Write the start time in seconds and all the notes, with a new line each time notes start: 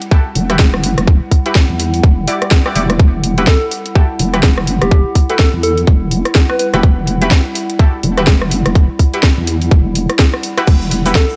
Already playing: G3 E4 F#5
0.02 closed hi-hat
0.11 E4 F#4 G4 A4, kick, closed hi-hat
0.35 E1, open hi-hat
0.50 E4 F#4 G4 B4, cross-stick, closed hi-hat
0.59 E1, kick, snare, closed hi-hat
0.74 cross-stick
0.83 F#1, open hi-hat
0.98 E1, cross-stick, closed hi-hat
1.07 kick, closed hi-hat
1.31 kick, open hi-hat
1.46 E4 F#4 G4 B4, closed hi-hat
1.55 kick, snare, closed hi-hat
1.70 E2
1.80 open hi-hat
1.94 open hi-hat
2.03 E1, kick, closed hi-hat
2.27 E4 F#4 G4 D5, open hi-hat
2.42 cross-stick, closed hi-hat
2.51 kick, snare, closed hi-hat
2.66 E4 F#4 G4 D5, cross-stick
2.75 E1 E4 F#4 G4 D5, open hi-hat
2.90 cross-stick, closed hi-hat
2.99 E1, kick, closed hi-hat
3.23 E1, open hi-hat
3.38 E4 F#4 G4 B4, closed hi-hat
3.47 A4, kick, snare, closed hi-hat
3.71 open hi-hat
3.86 closed hi-hat
3.95 E4 F#4 G4 A4, kick, closed hi-hat
4.19 E1, open hi-hat
4.33 E4 F#4 G4 B4, cross-stick, closed hi-hat
4.43 E1, kick, snare, closed hi-hat
4.58 cross-stick
4.67 F#1, open hi-hat
4.82 E1 G4, cross-stick, closed hi-hat
4.91 kick, closed hi-hat
5.15 kick, open hi-hat
5.30 E4 F#4 G4 A4 B4, closed hi-hat
5.39 A4, kick, snare, closed hi-hat
5.53 E2
5.63 A4, open hi-hat
5.78 open hi-hat
5.87 E1, kick, closed hi-hat
6.11 open hi-hat
6.25 cross-stick, closed hi-hat
6.35 kick, snare, closed hi-hat
6.49 B4, cross-stick
6.59 B4, open hi-hat
6.74 E1 E4 F#4 G4 B4, cross-stick, closed hi-hat
6.83 E1, kick, closed hi-hat
7.07 E1, open hi-hat
7.21 E4 F#4 G4 B4, closed hi-hat
7.31 kick, snare, closed hi-hat
7.55 open hi-hat
7.70 closed hi-hat
7.79 E4 F#4 G4 A4, kick, closed hi-hat
8.03 E1, open hi-hat
8.17 E4 F#4 G4 B4, cross-stick, closed hi-hat
8.27 E1, kick, snare, closed hi-hat
8.42 cross-stick
8.51 F#1, open hi-hat
8.66 E1, cross-stick, closed hi-hat
8.75 kick, closed hi-hat
8.99 kick, open hi-hat
9.14 E4 F#4 G4 B4, closed hi-hat
9.23 kick, snare, closed hi-hat
9.38 E2
9.47 open hi-hat
9.62 open hi-hat
9.71 E1, kick, closed hi-hat
9.95 open hi-hat
10.10 cross-stick, closed hi-hat
10.19 kick, snare, closed hi-hat
10.34 cross-stick
10.43 open hi-hat
10.58 E4 F#4 G4 B4, cross-stick, closed hi-hat
10.67 E1, kick, closed hi-hat, crash, shaker
10.82 shaker
10.91 E1, open hi-hat
11.06 E4 F#4 G4 B4, closed hi-hat, shaker
11.15 A4, kick, snare, closed hi-hat, shaker
11.29 shaker